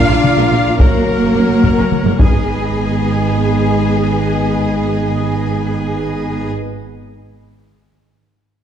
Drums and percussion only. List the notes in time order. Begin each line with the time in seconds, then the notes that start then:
0.24 taiko mid
0.37 taiko rim
0.79 taiko
1.63 taiko
1.78 taiko rim
1.92 taiko mid
2.06 taiko high
2.19 taiko